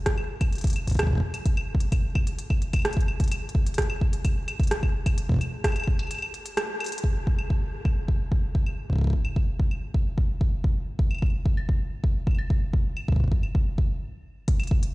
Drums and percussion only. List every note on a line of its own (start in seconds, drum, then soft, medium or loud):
0.06 kick loud
0.06 cross-stick loud
0.06 closed hi-hat medium
0.18 claves soft
0.41 kick loud
0.41 closed hi-hat soft
0.41 claves medium
0.52 closed hi-hat soft
0.55 closed hi-hat soft
0.58 closed hi-hat soft
0.61 closed hi-hat soft
0.64 kick loud
0.64 closed hi-hat soft
0.67 closed hi-hat soft
0.70 closed hi-hat medium
0.73 closed hi-hat medium
0.76 closed hi-hat soft
0.76 claves medium
0.87 kick soft
0.87 closed hi-hat medium
0.90 kick medium
0.90 closed hi-hat soft
0.92 closed hi-hat soft
0.94 kick medium
0.94 closed hi-hat soft
0.97 kick medium
0.97 cross-stick loud
0.97 closed hi-hat soft
0.99 kick medium
0.99 closed hi-hat medium
0.99 claves medium
1.07 kick loud
1.11 kick soft
1.13 kick medium
1.15 kick medium
1.18 kick medium
1.20 kick medium
1.34 closed hi-hat medium
1.34 claves medium
1.46 kick loud
1.46 closed hi-hat medium
1.57 claves medium
1.75 kick loud
1.80 closed hi-hat soft
1.92 kick loud
1.92 closed hi-hat medium
1.92 claves medium
2.15 kick loud
2.15 claves medium
2.27 closed hi-hat soft
2.39 closed hi-hat medium
2.50 kick loud
2.50 claves medium
2.62 closed hi-hat soft
2.73 kick loud
2.73 closed hi-hat medium
2.73 claves medium
2.76 claves medium
2.79 claves medium
2.82 cross-stick loud
2.82 closed hi-hat medium
2.82 claves soft
2.88 claves soft
2.91 closed hi-hat soft
2.91 claves soft
2.94 kick loud
2.94 claves soft
3.00 closed hi-hat soft
3.08 claves medium
3.20 kick loud
3.20 closed hi-hat soft
3.24 closed hi-hat soft
3.28 closed hi-hat soft
3.32 closed hi-hat medium
3.32 claves medium
3.49 closed hi-hat soft
3.55 kick loud
3.66 closed hi-hat soft
3.74 cross-stick loud
3.74 closed hi-hat soft
3.78 kick loud
3.78 closed hi-hat medium
3.90 claves medium
4.01 kick loud
4.13 closed hi-hat medium
4.25 kick loud
4.25 closed hi-hat medium
4.25 claves medium
4.48 closed hi-hat soft
4.48 claves medium
4.60 kick loud
4.60 closed hi-hat soft
4.63 closed hi-hat soft
4.67 cross-stick loud
4.67 closed hi-hat soft
4.71 closed hi-hat medium
4.83 kick loud
4.83 claves medium
5.06 kick loud
5.06 closed hi-hat medium
5.06 claves medium
5.18 closed hi-hat medium
5.29 kick loud
5.32 kick medium
5.34 kick medium
5.36 kick medium
5.39 kick soft
5.39 closed hi-hat soft
5.39 claves medium
5.64 kick loud
5.64 cross-stick loud
5.64 closed hi-hat medium
5.64 claves soft
5.68 claves soft
5.72 closed hi-hat soft
5.72 claves medium
5.76 claves medium
5.80 claves medium
5.84 kick loud
5.84 claves medium
5.99 closed hi-hat medium
5.99 claves soft
6.03 claves soft
6.07 closed hi-hat medium
6.07 claves soft
6.11 claves soft
6.15 claves soft
6.19 claves medium
6.22 claves medium
6.34 closed hi-hat soft
6.46 closed hi-hat medium
6.57 cross-stick loud
6.57 closed hi-hat medium
6.57 claves medium
6.80 closed hi-hat soft
6.80 claves medium
6.84 closed hi-hat soft
6.86 closed hi-hat medium
6.88 closed hi-hat soft
6.92 closed hi-hat medium
6.98 closed hi-hat medium
7.04 kick loud
7.27 kick loud
7.39 claves medium
7.50 kick loud
7.85 kick loud
7.85 claves soft
8.08 kick loud
8.32 kick loud
8.55 kick loud
8.66 claves soft
8.90 kick medium
8.93 kick medium
8.96 kick medium
8.98 kick medium
9.01 kick medium
9.04 kick loud
9.07 kick loud
9.10 kick loud
9.13 kick loud
9.25 claves soft
9.36 kick loud
9.60 kick loud
9.71 claves soft
9.94 kick loud
10.18 kick loud
10.41 kick loud
10.64 kick loud
10.99 kick loud
11.11 claves soft
11.15 claves soft
11.18 kick loud
11.18 claves soft
11.22 claves soft
11.26 claves soft
11.30 claves soft
11.46 kick loud
11.57 claves soft
11.69 kick loud
12.04 kick loud
12.27 kick loud
12.27 claves soft
12.31 claves soft
12.35 claves soft
12.38 claves soft
12.50 kick loud
12.73 kick loud
12.97 claves soft
13.08 kick loud
13.12 kick medium
13.16 kick medium
13.20 kick medium
13.24 kick soft
13.28 kick soft
13.32 kick loud
13.43 claves soft
13.55 kick loud
13.78 kick loud
14.48 kick loud
14.48 closed hi-hat medium
14.60 closed hi-hat soft
14.60 claves medium
14.63 closed hi-hat soft
14.67 kick loud
14.67 closed hi-hat soft
14.83 closed hi-hat medium